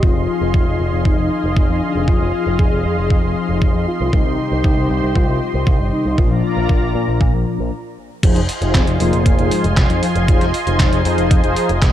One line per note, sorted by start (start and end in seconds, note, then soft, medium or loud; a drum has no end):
0.00 0.13 F1 loud
0.00 4.10 F3 medium
0.00 4.10 C4 medium
0.00 4.10 D#4 medium
0.00 4.10 F4 medium
0.00 0.53 F4 loud
0.00 4.09 G#4 medium
0.00 4.10 G#4 medium
0.00 6.14 D#5 medium
0.00 4.09 F5 medium
0.00 6.14 C6 medium
0.00 kick loud
0.16 0.26 F1 medium
0.41 0.52 F1 medium
0.54 0.64 F1 loud
0.54 1.07 F4 medium
0.54 kick loud
0.67 0.77 F1 medium
0.80 0.90 F1 medium
0.92 1.03 F1 medium
1.05 1.16 F1 loud
1.05 1.83 D#4 loud
1.05 kick loud
1.18 1.28 F1 medium
1.44 1.54 F1 medium
1.57 1.67 F1 loud
1.57 kick loud
1.69 1.80 F2 medium
1.82 2.09 D4 medium
1.95 2.05 F1 medium
2.08 2.18 F1 loud
2.08 2.58 F4 loud
2.08 kick loud
2.21 2.31 F1 medium
2.47 2.57 F1 medium
2.59 2.69 F1 medium
2.59 3.32 G#4 loud
2.59 kick loud
2.72 2.82 F1 medium
2.85 2.95 F2 medium
2.98 3.08 F1 medium
3.10 3.21 F2 loud
3.10 kick loud
3.23 3.34 F1 medium
3.49 3.59 F1 medium
3.62 3.72 F1 loud
3.62 kick loud
3.75 3.85 F2 medium
3.87 4.14 F4 loud
4.00 4.11 C2 medium
4.13 4.23 C2 loud
4.13 6.15 C3 medium
4.13 6.15 G3 medium
4.13 6.15 C4 medium
4.13 4.63 D#4 loud
4.13 6.15 D#4 medium
4.13 6.15 G4 medium
4.13 6.16 G4 medium
4.13 6.16 C5 medium
4.13 kick loud
4.26 4.36 C2 medium
4.52 4.62 C2 medium
4.64 4.75 C2 loud
4.64 5.17 D#4 loud
4.64 kick loud
4.77 4.87 C2 medium
4.90 5.00 C2 medium
5.03 5.13 C2 medium
5.15 5.26 C2 loud
5.15 5.67 F4 loud
5.15 kick loud
5.28 5.39 C2 medium
5.54 5.64 C2 medium
5.67 5.77 C2 loud
5.67 kick loud
5.80 5.90 G1 medium
5.92 6.20 D#4 loud
6.05 6.16 C2 medium
6.18 6.28 A#1 medium
6.18 7.72 A#2 medium
6.18 7.98 F4 loud
6.18 7.71 F4 medium
6.18 7.71 A#4 medium
6.18 7.71 D5 medium
6.18 7.71 A#5 medium
6.18 kick loud
6.31 6.41 A#1 medium
6.57 6.67 A#1 medium
6.69 6.80 A#1 loud
6.69 kick loud
6.82 6.93 A#1 medium
6.95 7.05 A#2 medium
7.08 7.18 A#1 medium
7.21 7.31 A#2 loud
7.21 kick loud
7.33 7.44 A#1 medium
7.59 7.69 A#1 medium
8.23 8.34 F1 loud
8.23 8.40 F3 loud
8.23 8.40 D#4 medium
8.23 8.40 F4 medium
8.23 11.92 F4 medium
8.23 8.40 G#4 medium
8.23 8.40 C5 loud
8.23 11.92 D#5 medium
8.23 11.92 G#5 medium
8.23 11.92 C6 medium
8.23 kick loud
8.23 closed hi-hat loud
8.23 crash loud
8.36 8.46 F1 medium
8.36 closed hi-hat soft
8.49 open hi-hat loud
8.61 8.72 F1 medium
8.61 8.97 F3 medium
8.61 8.97 D#4 medium
8.61 8.97 F4 medium
8.61 8.97 G#4 medium
8.61 8.97 C5 medium
8.61 closed hi-hat soft
8.75 8.85 F1 loud
8.75 8.86 C4 loud
8.75 kick loud
8.75 snare loud
8.75 clap loud
8.75 closed hi-hat loud
8.87 8.98 F1 medium
8.87 closed hi-hat soft
9.00 9.10 F1 medium
9.00 9.36 F3 loud
9.00 9.53 A#3 loud
9.00 9.36 D#4 medium
9.00 9.36 F4 medium
9.00 9.36 G#4 loud
9.00 9.36 C5 loud
9.00 open hi-hat medium
9.13 9.23 F1 medium
9.13 closed hi-hat soft
9.26 9.36 F1 loud
9.26 kick loud
9.26 closed hi-hat loud
9.39 9.49 F1 medium
9.39 9.66 F3 loud
9.39 9.66 D#4 medium
9.39 9.66 F4 medium
9.39 9.66 G#4 loud
9.39 9.66 C5 loud
9.39 closed hi-hat soft
9.51 9.79 G#3 loud
9.51 open hi-hat loud
9.64 9.75 F1 medium
9.64 closed hi-hat soft
9.77 9.87 F1 loud
9.77 10.02 F3 medium
9.77 kick loud
9.77 snare loud
9.77 clap loud
9.77 closed hi-hat loud
9.90 10.00 F2 medium
9.90 10.07 F3 medium
9.90 10.07 D#4 medium
9.90 10.07 F4 medium
9.90 10.07 G#4 medium
9.90 10.07 C5 medium
9.90 closed hi-hat soft
10.03 10.50 F3 medium
10.03 open hi-hat medium
10.15 10.26 F1 medium
10.15 closed hi-hat soft
10.28 10.39 F1 loud
10.28 10.45 F3 medium
10.28 10.45 D#4 medium
10.28 10.45 F4 medium
10.28 10.45 G#4 medium
10.28 10.45 C5 loud
10.28 kick loud
10.28 closed hi-hat medium
10.41 10.51 F1 medium
10.41 snare soft
10.41 closed hi-hat soft
10.54 open hi-hat loud
10.67 10.77 F1 medium
10.67 11.02 F3 medium
10.67 11.02 D#4 medium
10.67 11.02 F4 medium
10.67 11.02 G#4 medium
10.67 11.02 C5 loud
10.67 closed hi-hat soft
10.80 kick loud
10.80 snare loud
10.80 clap medium
10.80 closed hi-hat medium
10.92 11.03 F1 medium
10.92 closed hi-hat soft
11.05 11.16 F2 medium
11.05 11.41 F3 loud
11.05 11.41 D#4 medium
11.05 11.41 F4 medium
11.05 11.41 G#4 medium
11.05 11.41 C5 loud
11.05 open hi-hat medium
11.18 11.28 F1 medium
11.18 closed hi-hat soft
11.31 11.41 F2 loud
11.31 kick loud
11.31 closed hi-hat loud
11.44 11.54 F1 medium
11.44 11.71 F3 loud
11.44 11.71 D#4 medium
11.44 11.71 F4 medium
11.44 11.71 G#4 medium
11.44 11.71 C5 loud
11.44 closed hi-hat soft
11.56 open hi-hat loud
11.69 11.80 F1 medium
11.69 closed hi-hat soft
11.82 11.92 F1 loud
11.82 kick loud
11.82 snare loud
11.82 clap loud
11.82 closed hi-hat medium